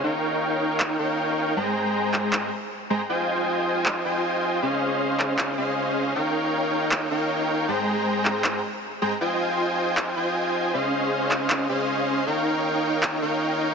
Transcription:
<<
  \new Staff \with { instrumentName = "Supersaw synth" } { \time 4/4 \key ees \mixolydian \tempo 4 = 157 <ees' bes' des'' f'' g''>2~ <ees' bes' des'' f'' g''>8 <ees' bes' des'' f'' g''>4. | <aes aes' c'' g'' bes''>2~ <aes aes' c'' g'' bes''>8 r4 <aes aes' c'' g'' bes''>8 | <f' c'' ees'' g'' aes''>2~ <f' c'' ees'' g'' aes''>8 <f' c'' ees'' g'' aes''>4. | <des' aes' c'' ees'' f''>2~ <des' aes' c'' ees'' f''>8 <des' aes' c'' ees'' f''>4. |
<ees' bes' des'' f'' g''>2~ <ees' bes' des'' f'' g''>8 <ees' bes' des'' f'' g''>4. | <aes aes' c'' g'' bes''>2~ <aes aes' c'' g'' bes''>8 r4 <aes aes' c'' g'' bes''>8 | <f' c'' ees'' g'' aes''>2~ <f' c'' ees'' g'' aes''>8 <f' c'' ees'' g'' aes''>4. | <des' aes' c'' ees'' f''>2~ <des' aes' c'' ees'' f''>8 <des' aes' c'' ees'' f''>4. |
<ees' bes' des'' f'' g''>2~ <ees' bes' des'' f'' g''>8 <ees' bes' des'' f'' g''>4. | }
  \new DrumStaff \with { instrumentName = "Drums" } \drummode { \time 4/4 r4 r4 hc4 r4 | r4 r8 hc8 hc4 r4 | r4 r4 hc4 r4 | r4 r8 hc8 hc4 r4 |
r4 r4 hc4 r4 | r4 r8 hc8 hc4 r4 | r4 r4 hc4 r4 | r4 r8 hc8 hc4 r4 |
r4 r4 hc4 r4 | }
>>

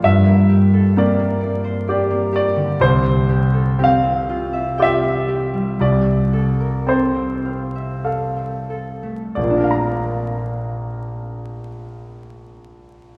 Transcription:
<<
  \new Staff \with { instrumentName = "Grand piano" } { \time 3/4 \key bes \lydian \tempo 4 = 58 << { e''4 d''4 r8 d''8 | c''4 f''4 e''4 | d''4 c''4 r4 | <bes,, bes, d' bes' d'' f'' bes''>2. | } \\ { g,4 bes4 <g' d''>4 | c,4 c'4 <f' g'>4 | c,4 c'4 <a' f''>4 | r2. | } >> }
  \new Staff \with { instrumentName = "Harp" } { \time 3/4 \key bes \lydian <g, bes d''>16 bes16 g'16 a'16 g'16 bes16 d''16 c''16 d''16 bes16 g'16 d16 | c16 c'16 g'16 a'16 g'16 c'16 f'16 e''16 g''16 c'16 g'16 g16 | c16 c'16 a'16 bes'16 a'16 c'16 f''16 e''16 f''16 c'16 a'16 a16 | <bes, bes d' bes' f'' bes''>2. | }
>>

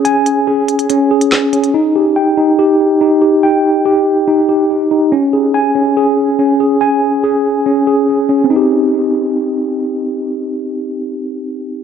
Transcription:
<<
  \new Staff \with { instrumentName = "Tine electric piano" } { \time 4/4 \key c \phrygian \tempo 4 = 142 <des' aes' aes''>4 aes'4 des'8 aes'4 des'8 | ees'8 g'8 g''8 ees'8 g'4 ees'8 g'8 | g''4 g'4 ees'8 g'4 ees'8 | des'8 aes'8 aes''8 des'8 aes'4 des'8 aes'8 |
aes''4 aes'4 des'8 aes'4 des'8 | <c' ees' g'>1~ | <c' ees' g'>1 | }
  \new DrumStaff \with { instrumentName = "Drums" } \drummode { \time 4/4 hh8 hh8 r8 hh16 hh16 hh8. hh16 <hc sn>8 hh16 hh16 | r4 r4 r4 r4 | r4 r4 r4 r4 | r4 r4 r4 r4 |
r4 r4 r4 r4 | r4 r4 r4 r4 | r4 r4 r4 r4 | }
>>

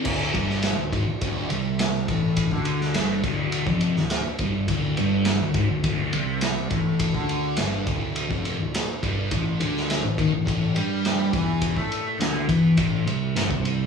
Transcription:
<<
  \new Staff \with { instrumentName = "Distorted electric guitar" } { \clef bass \time 4/4 \key d \minor \tempo 4 = 104 d,8 g,8. d,16 gis,16 d,16 d,8 c4 a,8~ | a,16 d8. g,8 d,8. f,8 d,8 r16 g,8 | d,8 g,8. d,16 gis,16 d,16 d,8 c4 a,8~ | a,16 d8. g,8 d,8. f,8 d,8 r16 g,8 |
a,8 d8. a,16 ees16 a,16 a,8 g4 e8~ | e16 a8. d8 e8 a,8 c8 g,16 c8. | }
  \new Staff \with { instrumentName = "Picked electric bass" } { \clef bass \time 4/4 \key d \minor d,,8 g,,8. d,,16 gis,,16 d,,16 d,,8 c,4 a,,8~ | a,,16 d,8. g,,8 d,,8. f,,8 d,,8 r16 g,,8 | d,,8 g,,8. d,,16 gis,,16 d,,16 d,,8 c,4 a,,8~ | a,,16 d,8. g,,8 d,,8. f,,8 d,,8 r16 g,,8 |
a,,8 d,8. a,,16 ees,16 a,,16 a,,8 g,4 e,8~ | e,16 a,8. d,8 e,8 a,,8 c,8 g,,16 c,8. | }
  \new DrumStaff \with { instrumentName = "Drums" } \drummode { \time 4/4 <cymc bd>8 <bd cymr>16 sn16 <cymr sn>8 <bd cymr>8 <bd cymr>8 cymr8 <cymr sn>8 <bd cymr>8 | <bd cymr>16 bd16 cymr16 sn16 <cymr sn>8 <bd cymr>8 cymr16 bd16 cymr16 sn16 <cymr sn>8 <bd cymr>8 | <bd cymr>8 cymr8 <cymr sn>8 <bd cymr>8 <bd cymr>8 cymr8 <cymr sn>8 <bd cymr>8 | <bd cymr>16 bd16 cymr8 <cymr sn>8 <bd cymr>8 cymr16 bd16 cymr8 <cymr sn>8 <bd cymr>8 |
<bd cymr>8 cymr16 sn16 <cymr sn>8 <bd cymr>8 <bd cymr>8 cymr8 <cymr sn>8 <bd cymr>8 | <bd cymr>16 bd16 cymr8 <cymr sn>8 <bd cymr>8 <bd cymr>8 cymr8 <cymr sn>16 bd16 cymr8 | }
>>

